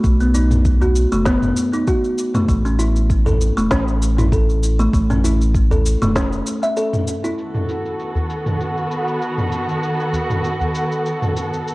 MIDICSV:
0, 0, Header, 1, 6, 480
1, 0, Start_track
1, 0, Tempo, 612245
1, 29, Time_signature, 4, 2, 24, 8
1, 9210, End_track
2, 0, Start_track
2, 0, Title_t, "String section"
2, 0, Program_c, 0, 48
2, 5787, Note_on_c, 0, 59, 64
2, 5787, Note_on_c, 0, 66, 62
2, 5787, Note_on_c, 0, 69, 79
2, 5788, Note_on_c, 0, 51, 66
2, 9210, Note_off_c, 0, 51, 0
2, 9210, Note_off_c, 0, 59, 0
2, 9210, Note_off_c, 0, 66, 0
2, 9210, Note_off_c, 0, 69, 0
2, 9210, End_track
3, 0, Start_track
3, 0, Title_t, "Kalimba"
3, 0, Program_c, 1, 108
3, 30, Note_on_c, 1, 57, 76
3, 154, Note_off_c, 1, 57, 0
3, 159, Note_on_c, 1, 59, 64
3, 264, Note_off_c, 1, 59, 0
3, 269, Note_on_c, 1, 63, 73
3, 393, Note_off_c, 1, 63, 0
3, 639, Note_on_c, 1, 66, 72
3, 702, Note_off_c, 1, 66, 0
3, 879, Note_on_c, 1, 57, 94
3, 984, Note_off_c, 1, 57, 0
3, 989, Note_on_c, 1, 59, 100
3, 1113, Note_off_c, 1, 59, 0
3, 1360, Note_on_c, 1, 63, 72
3, 1464, Note_off_c, 1, 63, 0
3, 1470, Note_on_c, 1, 66, 79
3, 1594, Note_off_c, 1, 66, 0
3, 1839, Note_on_c, 1, 57, 97
3, 1938, Note_off_c, 1, 57, 0
3, 1947, Note_on_c, 1, 57, 73
3, 2072, Note_off_c, 1, 57, 0
3, 2078, Note_on_c, 1, 61, 73
3, 2183, Note_off_c, 1, 61, 0
3, 2186, Note_on_c, 1, 64, 76
3, 2311, Note_off_c, 1, 64, 0
3, 2557, Note_on_c, 1, 69, 73
3, 2621, Note_off_c, 1, 69, 0
3, 2799, Note_on_c, 1, 57, 93
3, 2904, Note_off_c, 1, 57, 0
3, 2907, Note_on_c, 1, 61, 102
3, 3032, Note_off_c, 1, 61, 0
3, 3280, Note_on_c, 1, 64, 75
3, 3384, Note_off_c, 1, 64, 0
3, 3390, Note_on_c, 1, 69, 74
3, 3513, Note_off_c, 1, 69, 0
3, 3758, Note_on_c, 1, 57, 94
3, 3859, Note_off_c, 1, 57, 0
3, 3868, Note_on_c, 1, 57, 79
3, 3993, Note_off_c, 1, 57, 0
3, 3999, Note_on_c, 1, 61, 71
3, 4104, Note_off_c, 1, 61, 0
3, 4110, Note_on_c, 1, 64, 74
3, 4234, Note_off_c, 1, 64, 0
3, 4478, Note_on_c, 1, 69, 73
3, 4541, Note_off_c, 1, 69, 0
3, 4718, Note_on_c, 1, 57, 92
3, 4823, Note_off_c, 1, 57, 0
3, 4829, Note_on_c, 1, 61, 102
3, 4953, Note_off_c, 1, 61, 0
3, 5197, Note_on_c, 1, 76, 70
3, 5303, Note_off_c, 1, 76, 0
3, 5306, Note_on_c, 1, 69, 78
3, 5425, Note_off_c, 1, 69, 0
3, 5677, Note_on_c, 1, 64, 78
3, 5782, Note_off_c, 1, 64, 0
3, 9210, End_track
4, 0, Start_track
4, 0, Title_t, "Sub bass"
4, 0, Program_c, 2, 38
4, 31, Note_on_c, 2, 35, 94
4, 830, Note_off_c, 2, 35, 0
4, 881, Note_on_c, 2, 30, 82
4, 1188, Note_off_c, 2, 30, 0
4, 1949, Note_on_c, 2, 33, 92
4, 2749, Note_off_c, 2, 33, 0
4, 2799, Note_on_c, 2, 28, 83
4, 2883, Note_off_c, 2, 28, 0
4, 2909, Note_on_c, 2, 33, 93
4, 3827, Note_off_c, 2, 33, 0
4, 3869, Note_on_c, 2, 33, 95
4, 4669, Note_off_c, 2, 33, 0
4, 4718, Note_on_c, 2, 28, 82
4, 5026, Note_off_c, 2, 28, 0
4, 9210, End_track
5, 0, Start_track
5, 0, Title_t, "Udu"
5, 269, Note_on_c, 9, 64, 77
5, 347, Note_off_c, 9, 64, 0
5, 641, Note_on_c, 9, 64, 78
5, 719, Note_off_c, 9, 64, 0
5, 2560, Note_on_c, 9, 64, 76
5, 2639, Note_off_c, 9, 64, 0
5, 4107, Note_on_c, 9, 64, 68
5, 4186, Note_off_c, 9, 64, 0
5, 4476, Note_on_c, 9, 64, 86
5, 4555, Note_off_c, 9, 64, 0
5, 6391, Note_on_c, 9, 64, 80
5, 6470, Note_off_c, 9, 64, 0
5, 7941, Note_on_c, 9, 64, 78
5, 8019, Note_off_c, 9, 64, 0
5, 8315, Note_on_c, 9, 64, 85
5, 8393, Note_off_c, 9, 64, 0
5, 9210, End_track
6, 0, Start_track
6, 0, Title_t, "Drums"
6, 31, Note_on_c, 9, 36, 99
6, 31, Note_on_c, 9, 82, 37
6, 109, Note_off_c, 9, 36, 0
6, 110, Note_off_c, 9, 82, 0
6, 160, Note_on_c, 9, 82, 21
6, 238, Note_off_c, 9, 82, 0
6, 270, Note_on_c, 9, 82, 72
6, 348, Note_off_c, 9, 82, 0
6, 399, Note_on_c, 9, 45, 76
6, 402, Note_on_c, 9, 82, 31
6, 477, Note_off_c, 9, 45, 0
6, 480, Note_off_c, 9, 82, 0
6, 510, Note_on_c, 9, 36, 90
6, 510, Note_on_c, 9, 82, 42
6, 588, Note_off_c, 9, 36, 0
6, 589, Note_off_c, 9, 82, 0
6, 643, Note_on_c, 9, 82, 19
6, 721, Note_off_c, 9, 82, 0
6, 749, Note_on_c, 9, 82, 75
6, 827, Note_off_c, 9, 82, 0
6, 879, Note_on_c, 9, 82, 31
6, 957, Note_off_c, 9, 82, 0
6, 984, Note_on_c, 9, 38, 68
6, 988, Note_on_c, 9, 82, 39
6, 989, Note_on_c, 9, 36, 97
6, 1063, Note_off_c, 9, 38, 0
6, 1066, Note_off_c, 9, 82, 0
6, 1068, Note_off_c, 9, 36, 0
6, 1115, Note_on_c, 9, 45, 76
6, 1118, Note_on_c, 9, 82, 20
6, 1193, Note_off_c, 9, 45, 0
6, 1196, Note_off_c, 9, 82, 0
6, 1227, Note_on_c, 9, 82, 77
6, 1305, Note_off_c, 9, 82, 0
6, 1359, Note_on_c, 9, 82, 29
6, 1437, Note_off_c, 9, 82, 0
6, 1469, Note_on_c, 9, 36, 92
6, 1469, Note_on_c, 9, 82, 40
6, 1547, Note_off_c, 9, 82, 0
6, 1548, Note_off_c, 9, 36, 0
6, 1600, Note_on_c, 9, 82, 20
6, 1679, Note_off_c, 9, 82, 0
6, 1709, Note_on_c, 9, 82, 70
6, 1788, Note_off_c, 9, 82, 0
6, 1838, Note_on_c, 9, 45, 75
6, 1841, Note_on_c, 9, 82, 30
6, 1916, Note_off_c, 9, 45, 0
6, 1919, Note_off_c, 9, 82, 0
6, 1948, Note_on_c, 9, 36, 101
6, 1951, Note_on_c, 9, 82, 38
6, 2027, Note_off_c, 9, 36, 0
6, 2030, Note_off_c, 9, 82, 0
6, 2082, Note_on_c, 9, 82, 21
6, 2160, Note_off_c, 9, 82, 0
6, 2190, Note_on_c, 9, 82, 69
6, 2269, Note_off_c, 9, 82, 0
6, 2320, Note_on_c, 9, 82, 28
6, 2399, Note_off_c, 9, 82, 0
6, 2428, Note_on_c, 9, 36, 96
6, 2432, Note_on_c, 9, 82, 43
6, 2507, Note_off_c, 9, 36, 0
6, 2511, Note_off_c, 9, 82, 0
6, 2559, Note_on_c, 9, 45, 78
6, 2562, Note_on_c, 9, 82, 20
6, 2637, Note_off_c, 9, 45, 0
6, 2640, Note_off_c, 9, 82, 0
6, 2673, Note_on_c, 9, 82, 70
6, 2751, Note_off_c, 9, 82, 0
6, 2803, Note_on_c, 9, 82, 30
6, 2882, Note_off_c, 9, 82, 0
6, 2908, Note_on_c, 9, 36, 100
6, 2908, Note_on_c, 9, 38, 73
6, 2911, Note_on_c, 9, 82, 43
6, 2986, Note_off_c, 9, 38, 0
6, 2987, Note_off_c, 9, 36, 0
6, 2989, Note_off_c, 9, 82, 0
6, 3042, Note_on_c, 9, 82, 20
6, 3120, Note_off_c, 9, 82, 0
6, 3153, Note_on_c, 9, 82, 74
6, 3231, Note_off_c, 9, 82, 0
6, 3280, Note_on_c, 9, 45, 73
6, 3283, Note_on_c, 9, 82, 29
6, 3358, Note_off_c, 9, 45, 0
6, 3362, Note_off_c, 9, 82, 0
6, 3388, Note_on_c, 9, 36, 100
6, 3392, Note_on_c, 9, 82, 38
6, 3466, Note_off_c, 9, 36, 0
6, 3471, Note_off_c, 9, 82, 0
6, 3524, Note_on_c, 9, 82, 20
6, 3602, Note_off_c, 9, 82, 0
6, 3632, Note_on_c, 9, 82, 73
6, 3710, Note_off_c, 9, 82, 0
6, 3762, Note_on_c, 9, 82, 28
6, 3841, Note_off_c, 9, 82, 0
6, 3868, Note_on_c, 9, 36, 104
6, 3874, Note_on_c, 9, 82, 40
6, 3946, Note_off_c, 9, 36, 0
6, 3953, Note_off_c, 9, 82, 0
6, 4001, Note_on_c, 9, 45, 79
6, 4004, Note_on_c, 9, 82, 21
6, 4079, Note_off_c, 9, 45, 0
6, 4082, Note_off_c, 9, 82, 0
6, 4112, Note_on_c, 9, 82, 72
6, 4191, Note_off_c, 9, 82, 0
6, 4243, Note_on_c, 9, 82, 29
6, 4322, Note_off_c, 9, 82, 0
6, 4347, Note_on_c, 9, 36, 99
6, 4351, Note_on_c, 9, 82, 43
6, 4425, Note_off_c, 9, 36, 0
6, 4430, Note_off_c, 9, 82, 0
6, 4483, Note_on_c, 9, 82, 21
6, 4562, Note_off_c, 9, 82, 0
6, 4592, Note_on_c, 9, 82, 74
6, 4671, Note_off_c, 9, 82, 0
6, 4720, Note_on_c, 9, 45, 80
6, 4723, Note_on_c, 9, 82, 31
6, 4798, Note_off_c, 9, 45, 0
6, 4801, Note_off_c, 9, 82, 0
6, 4826, Note_on_c, 9, 36, 101
6, 4828, Note_on_c, 9, 38, 75
6, 4831, Note_on_c, 9, 82, 42
6, 4905, Note_off_c, 9, 36, 0
6, 4907, Note_off_c, 9, 38, 0
6, 4910, Note_off_c, 9, 82, 0
6, 4959, Note_on_c, 9, 82, 21
6, 5038, Note_off_c, 9, 82, 0
6, 5069, Note_on_c, 9, 82, 78
6, 5147, Note_off_c, 9, 82, 0
6, 5198, Note_on_c, 9, 82, 29
6, 5276, Note_off_c, 9, 82, 0
6, 5306, Note_on_c, 9, 82, 38
6, 5384, Note_off_c, 9, 82, 0
6, 5436, Note_on_c, 9, 45, 75
6, 5439, Note_on_c, 9, 82, 20
6, 5514, Note_off_c, 9, 45, 0
6, 5517, Note_off_c, 9, 82, 0
6, 5547, Note_on_c, 9, 82, 72
6, 5626, Note_off_c, 9, 82, 0
6, 5680, Note_on_c, 9, 82, 29
6, 5759, Note_off_c, 9, 82, 0
6, 5789, Note_on_c, 9, 82, 36
6, 5867, Note_off_c, 9, 82, 0
6, 5916, Note_on_c, 9, 45, 69
6, 5919, Note_on_c, 9, 82, 19
6, 5994, Note_off_c, 9, 45, 0
6, 5997, Note_off_c, 9, 82, 0
6, 6028, Note_on_c, 9, 82, 64
6, 6106, Note_off_c, 9, 82, 0
6, 6158, Note_on_c, 9, 82, 28
6, 6236, Note_off_c, 9, 82, 0
6, 6268, Note_on_c, 9, 82, 37
6, 6346, Note_off_c, 9, 82, 0
6, 6398, Note_on_c, 9, 82, 17
6, 6477, Note_off_c, 9, 82, 0
6, 6507, Note_on_c, 9, 82, 64
6, 6585, Note_off_c, 9, 82, 0
6, 6634, Note_on_c, 9, 45, 66
6, 6637, Note_on_c, 9, 82, 28
6, 6712, Note_off_c, 9, 45, 0
6, 6715, Note_off_c, 9, 82, 0
6, 6746, Note_on_c, 9, 82, 36
6, 6825, Note_off_c, 9, 82, 0
6, 6878, Note_on_c, 9, 82, 19
6, 6956, Note_off_c, 9, 82, 0
6, 6987, Note_on_c, 9, 82, 70
6, 7066, Note_off_c, 9, 82, 0
6, 7117, Note_on_c, 9, 82, 27
6, 7196, Note_off_c, 9, 82, 0
6, 7227, Note_on_c, 9, 82, 37
6, 7305, Note_off_c, 9, 82, 0
6, 7353, Note_on_c, 9, 45, 62
6, 7356, Note_on_c, 9, 82, 19
6, 7432, Note_off_c, 9, 45, 0
6, 7435, Note_off_c, 9, 82, 0
6, 7464, Note_on_c, 9, 82, 67
6, 7542, Note_off_c, 9, 82, 0
6, 7595, Note_on_c, 9, 82, 29
6, 7674, Note_off_c, 9, 82, 0
6, 7706, Note_on_c, 9, 82, 37
6, 7785, Note_off_c, 9, 82, 0
6, 7839, Note_on_c, 9, 82, 20
6, 7917, Note_off_c, 9, 82, 0
6, 7947, Note_on_c, 9, 82, 71
6, 8025, Note_off_c, 9, 82, 0
6, 8075, Note_on_c, 9, 45, 64
6, 8078, Note_on_c, 9, 82, 30
6, 8153, Note_off_c, 9, 45, 0
6, 8156, Note_off_c, 9, 82, 0
6, 8186, Note_on_c, 9, 82, 39
6, 8265, Note_off_c, 9, 82, 0
6, 8318, Note_on_c, 9, 82, 20
6, 8397, Note_off_c, 9, 82, 0
6, 8426, Note_on_c, 9, 82, 68
6, 8505, Note_off_c, 9, 82, 0
6, 8560, Note_on_c, 9, 82, 31
6, 8639, Note_off_c, 9, 82, 0
6, 8670, Note_on_c, 9, 82, 38
6, 8748, Note_off_c, 9, 82, 0
6, 8798, Note_on_c, 9, 45, 67
6, 8801, Note_on_c, 9, 82, 19
6, 8876, Note_off_c, 9, 45, 0
6, 8880, Note_off_c, 9, 82, 0
6, 8911, Note_on_c, 9, 82, 69
6, 8990, Note_off_c, 9, 82, 0
6, 9044, Note_on_c, 9, 82, 29
6, 9122, Note_off_c, 9, 82, 0
6, 9155, Note_on_c, 9, 82, 40
6, 9210, Note_off_c, 9, 82, 0
6, 9210, End_track
0, 0, End_of_file